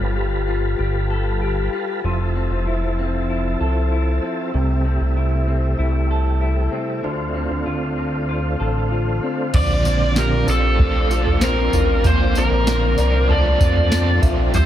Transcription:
Already playing: G3 F4 A4 B4
0.01 G1
0.16 G4
0.48 F4
0.79 G1 G4
1.10 A4
1.42 G4
1.73 F4
2.04 F1 F3 C4 E4
2.36 C4
2.51 F1
2.66 F1 E4
2.99 C4
3.30 E4
3.60 C2 A4
3.92 E4
4.22 C4
4.54 C2 C3 G3 A3
4.85 C4
5.01 C2
5.16 E4
5.47 C4
5.78 C2 E4
6.11 A4
6.41 E4
6.72 C4
7.03 D2 D3 C4 F4
7.35 C4
7.50 D2
7.66 D2 F4
7.98 C4
8.29 F4
8.60 A1 A4
8.91 F4
9.23 C4
9.54 A#1 A#2 D3 F3 C4 D4 F4 D5, kick, floor tom, crash, tambourine
9.85 C4, tambourine
10.16 F4 G4 A#4, snare, tambourine
10.48 A#1 C4 F4 A4, tambourine
10.52 A3
10.79 A#1 A3 C4 F4, kick, floor tom
10.84 A4
11.11 F4, tambourine
11.26 floor tom
11.41 C4 F4 A#4 C5, snare, tambourine
11.73 A1 F4, floor tom, tambourine
12.03 A#1 A#2 D3 C4 F4 C5, floor tom, tambourine
12.35 C4 A#4, tambourine
12.51 A#1
12.67 F4, snare, tambourine
12.98 C2 C4 F4 D5, tambourine
13.28 A3 C4 F4 A4 D5, floor tom
13.60 F2 F4, kick, tambourine
13.76 floor tom
13.90 A3 C4 F4, snare, tambourine
13.94 A4
14.22 A#1 F4 E5, kick, floor tom, tambourine
14.53 C2 C3 E3 G3 C4 E4 C5, kick, floor tom, tambourine

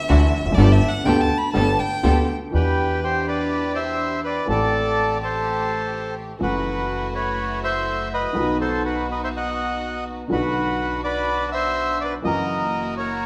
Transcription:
Already playing: E5
0.09 D2 D3 E3 A3 D4 E4 F#4
0.40 E1 E2
0.45 F1 F2
0.52 F#1 F#2 D5
0.57 G1 G2 D3 A3 B3 G4 A4
0.72 E5
0.89 F#5
1.04 D2 D3 A3 B3 G4 A4 G5
1.21 A5
1.38 B5
1.53 G1 G2 D3 A3 B3 G4 A4 A5
1.80 G5
2.03 D2 D3 A3 B3 G4 A4
2.51 E2 B2 E3 D4 E4 G4 B4
2.55 G4
3.04 G4 C5
3.28 B4 D5
3.75 C5 E5
4.24 B4 D5
4.46 A1 A2 E3 A3 C4 G4 A4
4.50 G4 D5
5.23 A4 C5
6.39 F#1 F#2 E3 F#3 A3 C#4 E4 F#4 B4
6.43 F#4
7.15 B4 C#5
7.64 C5 E5
8.14 B4 D#5
8.33 B1 B2 D#3 F#3 B3 D#4 F#4
8.37 F#4
8.61 A4 C5
8.85 F#4 B4
9.11 B4 D#5
9.24 C5 E5
9.36 D#5 F#5
10.28 B1 B2 D3 F#3 D4 F#4
10.32 B1 F#4 B4
11.04 B4 D5
11.52 C5 E5
12.01 B4 D5
12.22 F#1 F#2 E3 F#3 A#3 C#4 E4 F#4 D#5
12.27 A#4
12.97 A#4 C#5

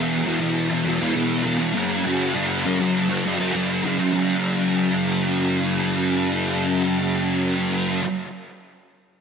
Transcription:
Already playing: E2 B2 E3
0.25 E2 B2 E3
0.40 B2 E3
0.70 B2 E3
0.84 E2 B2 E3
0.99 B2 E3
1.13 E2 B2 E3
1.44 E2 B2 E3
1.59 B2 E3
1.74 F#2 C#3 F#3
2.04 F#2 C#3 F#3
2.34 F#2 C#3 F#3
2.64 F#2 C#3 F#3
2.79 C#3 F#3
3.09 C#3 F#3
3.24 F#2 C#3 F#3
3.39 C#3 F#3
3.54 F#2 C#3 F#3
3.82 F#2 C#3 F#3
3.98 C#3 F#3
4.12 F#2 C#3 F#3

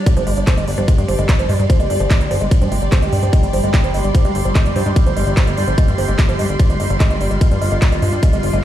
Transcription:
Already playing: G3 G4 D5 F6
0.06 G3 G4, kick, closed hi-hat, ride
0.17 G1 F3, closed hi-hat
0.27 G1 G#3, open hi-hat
0.37 G1 G3, closed hi-hat
0.47 F3, kick, clap, closed hi-hat, ride
0.57 G1 G#3, closed hi-hat
0.68 G1 G3 C6, open hi-hat
0.78 G1 F3, closed hi-hat
0.88 G#3, kick, closed hi-hat, ride
0.98 G2 G3, closed hi-hat
1.08 G1 F3, open hi-hat
1.19 G1 G#3, closed hi-hat
1.29 G3, kick, clap, closed hi-hat, ride
1.39 G1 F3, closed hi-hat
1.49 G2 G#3, open hi-hat
1.59 G2 G3, closed hi-hat
1.70 F3, kick, closed hi-hat, ride
1.80 G1 G#3, closed hi-hat
1.90 G1 G3, open hi-hat
2.00 G1 F3, closed hi-hat
2.11 G#3, kick, clap, closed hi-hat, ride
2.21 G1 G3, closed hi-hat
2.31 G1 F3, open hi-hat
2.41 G1 G#3, closed hi-hat
2.51 G3, kick, closed hi-hat, ride
2.62 G2 F3, closed hi-hat
2.72 G1 G#3, open hi-hat
2.82 G1 G3, closed hi-hat
2.92 F3, kick, clap, closed hi-hat, ride
3.02 G1 G#3, closed hi-hat
3.13 G2 G3, open hi-hat
3.23 G2 F3, closed hi-hat
3.33 G#3, kick, closed hi-hat, ride
3.43 G1 G3, closed hi-hat
3.53 G1 F3, open hi-hat
3.64 G1 G#3, closed hi-hat
3.74 G3, kick, clap, closed hi-hat, ride
3.84 G1 F3, closed hi-hat
3.94 G1 G#3, open hi-hat
4.04 G1 G3, closed hi-hat
4.15 F3, kick, closed hi-hat, ride
4.25 G2 G#3, closed hi-hat
4.35 G1 G3, open hi-hat
4.45 G1 F3, closed hi-hat
4.55 G#3, kick, clap, closed hi-hat, ride
4.66 G1 G3, closed hi-hat
4.76 G2 F3, open hi-hat
4.86 G2 G#3, closed hi-hat
4.96 G3, kick, closed hi-hat, ride
5.06 G1 F3, closed hi-hat
5.17 G1 G#3, open hi-hat
5.27 G1 G3, closed hi-hat
5.37 F3, kick, clap, closed hi-hat, ride
5.47 G1 G#3, closed hi-hat
5.57 G1 G3, open hi-hat
5.68 G1 F3, closed hi-hat
5.78 G#3, kick, closed hi-hat, ride
5.88 G2 G3, closed hi-hat
5.98 G1 F3, open hi-hat
6.08 G1 G#3, closed hi-hat
6.19 G3, kick, clap, closed hi-hat, ride
6.29 G1 F3, closed hi-hat
6.39 G1 G#3, open hi-hat
6.49 G1 G3, closed hi-hat
6.59 G3 F4, kick, closed hi-hat, ride
6.70 G1 G#3, closed hi-hat
6.80 G1 G#3, open hi-hat
6.90 G1 G3, closed hi-hat
7.00 G#3, kick, clap, closed hi-hat, ride
7.10 G1 G#3, closed hi-hat
7.21 G1 G3, open hi-hat
7.31 G1 G#3, closed hi-hat
7.41 G#3, kick, closed hi-hat, ride
7.51 G2 G3, closed hi-hat
7.62 G1 G#3, open hi-hat
7.72 G1 G#3, closed hi-hat
7.82 G3, kick, clap, closed hi-hat, ride
7.92 G1 G#3, closed hi-hat
8.02 G2 G#3, open hi-hat
8.13 G2 G3, closed hi-hat
8.23 G#3, kick, closed hi-hat, ride
8.33 G1 G#3, closed hi-hat
8.43 G1 G3, open hi-hat
8.53 G1 G#3, closed hi-hat

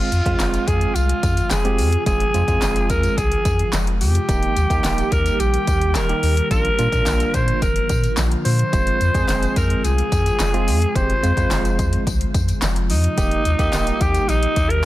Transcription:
Already playing: C3 F3 G#3 F4
0.12 F2, closed hi-hat, tambourine
0.26 F2 G#3 C4 F4, kick, closed hi-hat
0.40 F1, snare, clap, closed hi-hat, tambourine
0.54 closed hi-hat, tambourine
0.67 F2 G#4, kick, closed hi-hat, tambourine
0.81 closed hi-hat
0.95 C2 F4, closed hi-hat, tambourine
1.09 closed hi-hat
1.23 F2, kick, closed hi-hat, tambourine
1.37 closed hi-hat, tambourine
1.51 F1 G#4, snare, clap, closed hi-hat, tambourine
1.65 G#3 C4 G4, closed hi-hat
1.78 F2, open hi-hat, tambourine
1.92 closed hi-hat
2.06 F1 G#3 C4 F4 G#4, kick, closed hi-hat, tambourine
2.20 closed hi-hat
2.34 F2 G#3 C4 F4, closed hi-hat, tambourine
2.48 F2 G#3 C4 F4, kick, closed hi-hat, tambourine
2.62 F1, snare, clap, closed hi-hat, tambourine
2.76 closed hi-hat, tambourine
2.90 F2 A#4, kick, closed hi-hat, tambourine
3.03 closed hi-hat, tambourine
3.17 C2 G#4, kick, closed hi-hat, tambourine
3.32 closed hi-hat
3.45 F2, kick, closed hi-hat, tambourine
3.59 closed hi-hat
3.73 F1, snare, clap, closed hi-hat, tambourine
3.87 closed hi-hat
4.01 F2 G4, open hi-hat, tambourine
4.15 closed hi-hat
4.29 D#1 D#3 G3 A#3 D#4 G4, kick, closed hi-hat, tambourine
4.43 closed hi-hat
4.56 D#2, closed hi-hat, tambourine
4.70 D#2 A#3 D#4 G4, kick, closed hi-hat, tambourine
4.84 D#1, snare, clap, closed hi-hat, tambourine
4.98 closed hi-hat, tambourine
5.12 D#2 A#4, kick, closed hi-hat, tambourine
5.26 closed hi-hat, tambourine
5.40 A#1 G4, closed hi-hat, tambourine
5.54 closed hi-hat
5.67 D#2, kick, closed hi-hat, tambourine
5.81 closed hi-hat
5.95 D#1 A#4, snare, clap, closed hi-hat, tambourine
6.09 A#3 D#4 G4, closed hi-hat
6.23 D#2, open hi-hat, tambourine
6.37 closed hi-hat
6.51 A#1 D3 F3 A#3 D4 F4 A#4, kick, closed hi-hat, tambourine
6.65 closed hi-hat
6.78 A#2 A#3 D4 F4, closed hi-hat, tambourine
6.92 A#2 A#3 D4 F4, kick, closed hi-hat, tambourine
7.06 A#1, snare, clap, closed hi-hat, tambourine
7.20 closed hi-hat, tambourine
7.34 A#2 C5, kick, closed hi-hat, tambourine
7.48 closed hi-hat
7.62 F1 A#4, kick, closed hi-hat, tambourine
7.76 closed hi-hat
7.89 A#2, kick, closed hi-hat, tambourine
8.03 closed hi-hat, tambourine
8.17 A#1, snare, clap, closed hi-hat, tambourine
8.31 closed hi-hat
8.45 A#2 C5, open hi-hat, tambourine
8.59 closed hi-hat
8.73 F1 C3 G#3 C4 F4, kick, closed hi-hat, tambourine
8.87 closed hi-hat
9.01 F2, closed hi-hat, tambourine
9.14 F2 G#3 C4 G#4, kick, closed hi-hat, tambourine
9.29 F1, snare, clap, closed hi-hat, tambourine
9.43 closed hi-hat, tambourine
9.56 F2 A#4, kick, closed hi-hat, tambourine
9.70 closed hi-hat
9.84 C2 G#4, closed hi-hat, tambourine
9.98 closed hi-hat
10.12 F2, kick, closed hi-hat, tambourine
10.26 closed hi-hat, tambourine
10.40 F1, snare, clap, closed hi-hat, tambourine
10.54 G#3 C4 F4, closed hi-hat
10.68 F2, open hi-hat, tambourine
10.82 closed hi-hat
10.95 F1 G#3 C4 G4 C5, kick, closed hi-hat, tambourine
11.10 closed hi-hat
11.23 F2 G#3 C4 F4, closed hi-hat, tambourine
11.37 F2 G#3 C4 F4, kick, closed hi-hat, tambourine
11.51 F1, snare, clap, closed hi-hat, tambourine
11.65 closed hi-hat, tambourine
11.79 F2, kick, closed hi-hat, tambourine
11.93 closed hi-hat
12.07 C2, kick, closed hi-hat, tambourine
12.21 closed hi-hat
12.34 F2, kick, closed hi-hat, tambourine
12.48 closed hi-hat, tambourine
12.62 F1, snare, clap, closed hi-hat, tambourine
12.76 closed hi-hat
12.90 F2 D#4, open hi-hat, tambourine
13.04 closed hi-hat
13.17 D#1 D#3 G3 A#3 D#4 G4, kick, closed hi-hat, tambourine
13.31 closed hi-hat
13.45 D#2, closed hi-hat, tambourine
13.59 D#2 A#3 D#4 G4, kick, closed hi-hat, tambourine
13.73 D#1, snare, clap, closed hi-hat, tambourine
13.87 closed hi-hat, tambourine
14.01 D#2 G4, kick, closed hi-hat, tambourine
14.14 closed hi-hat, tambourine
14.28 A#1 D#4, closed hi-hat, tambourine
14.43 closed hi-hat
14.56 D#2, kick, closed hi-hat, tambourine
14.70 A#4, closed hi-hat

